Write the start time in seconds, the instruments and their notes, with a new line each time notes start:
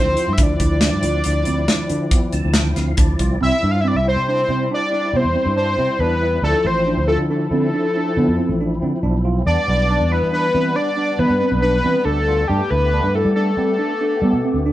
Already playing: tonewheel organ F3 C4 E4
0.00 analog synth lead C5
0.05 fretless electric bass D2
0.17 tine electric piano F4, closed hi-hat
0.28 fretless electric bass G2
0.33 tonewheel organ F3, analog synth lead E5
0.37 fretless electric bass D2, tonewheel organ C4 E4, tine electric piano D4, kick, closed hi-hat
0.43 analog synth lead D5
0.60 fretless electric bass D2, tine electric piano E4, kick, closed hi-hat
0.81 tine electric piano D4, snare, closed hi-hat
0.92 fretless electric bass G2
1.03 fretless electric bass D2, tine electric piano F4, closed hi-hat
1.24 fretless electric bass D2, tine electric piano D4, closed hi-hat
1.45 fretless electric bass D2, tine electric piano C4, closed hi-hat
1.68 tine electric piano D4, snare, closed hi-hat
1.89 fretless electric bass D3, tine electric piano D4, closed hi-hat
2.11 tine electric piano B3, kick, closed hi-hat
2.33 fretless electric bass D2, tine electric piano C4, tonewheel organ A5, closed hi-hat
2.45 fretless electric bass D2
2.54 tine electric piano D4, tonewheel organ G5, snare, closed hi-hat
2.75 fretless electric bass D2, tine electric piano C4, tonewheel organ F5, snare, closed hi-hat
2.97 fretless electric bass D2, tine electric piano D4, tonewheel organ D5, kick, closed hi-hat
3.18 fretless electric bass C2, tine electric piano F4, tonewheel organ D5, kick, closed hi-hat
3.41 fretless electric bass C2, tonewheel organ G3 C4 E4, tine electric piano C4, analog synth lead E5
3.63 fretless electric bass G2, tine electric piano D4
3.71 analog synth lead F5
3.81 tine electric piano C4, analog synth lead E5
3.88 analog synth lead D5
3.95 fretless electric bass C2, analog synth lead E5
4.06 tine electric piano E4, analog synth lead C5
4.16 fretless electric bass C3
4.28 tine electric piano D4, analog synth lead C5
4.49 fretless electric bass C3, tine electric piano C4
4.71 tine electric piano D4, analog synth lead D5
4.92 tine electric piano D4
5.13 fretless electric bass C3, tine electric piano B3, analog synth lead C5
5.24 fretless electric bass E2
5.35 tine electric piano C4
5.46 fretless electric bass G2
5.57 tine electric piano D4, analog synth lead C5
5.78 fretless electric bass C3, tine electric piano C4
5.99 fretless electric bass E2, tine electric piano D4, analog synth lead B4
6.23 tine electric piano E4
6.42 fretless electric bass D2, tonewheel organ F3 C4 E4, tine electric piano D4, analog synth lead A4
6.65 fretless electric bass A1, tine electric piano E4, analog synth lead C5
6.87 tine electric piano D4
6.97 fretless electric bass D2
7.08 tine electric piano F4, analog synth lead A4
7.19 fretless electric bass D3
7.30 tine electric piano D4, analog synth lead A4
7.51 fretless electric bass D3, tine electric piano C4
7.74 tine electric piano D4
7.97 tine electric piano D4
8.17 fretless electric bass D3, tine electric piano B3
8.28 fretless electric bass F2
8.39 tine electric piano C4
8.49 fretless electric bass A1
8.61 tine electric piano D4
8.82 fretless electric bass D3, tine electric piano C4
9.03 fretless electric bass B1, tine electric piano D4
9.25 tine electric piano F4
9.45 fretless electric bass E2, tonewheel organ G3 B3 D4, tine electric piano D4, analog synth lead D5
9.68 fretless electric bass B1, tine electric piano E4
9.90 tine electric piano D4
10.00 fretless electric bass E2
10.12 tine electric piano E4, analog synth lead B4
10.22 fretless electric bass E3
10.33 tine electric piano D4, analog synth lead B4
10.55 fretless electric bass E3, tine electric piano C4
10.75 tine electric piano D4, analog synth lead D5
10.97 tine electric piano D4
11.18 fretless electric bass E3, tine electric piano B3, analog synth lead B4
11.30 fretless electric bass G2
11.41 tine electric piano C4
11.52 fretless electric bass B1
11.62 tine electric piano D4, analog synth lead B4
11.84 fretless electric bass E3, tine electric piano C4
12.05 fretless electric bass D2, tine electric piano D4, analog synth lead A4
12.28 tine electric piano F4
12.48 fretless electric bass G2, tonewheel organ A3 B3 G4, tine electric piano D4, analog synth lead G4
12.70 fretless electric bass D2, tine electric piano E4, analog synth lead B4
12.93 tine electric piano D4
13.03 fretless electric bass G2
13.15 tine electric piano E4, analog synth lead A4
13.25 fretless electric bass G3
13.36 tine electric piano D4, analog synth lead A4
13.57 fretless electric bass G3, tine electric piano C4
13.79 tine electric piano D4
14.01 tine electric piano D4
14.22 fretless electric bass G3, tine electric piano B3
14.33 fretless electric bass B2
14.45 tine electric piano C4
14.54 fretless electric bass D2
14.66 tine electric piano D4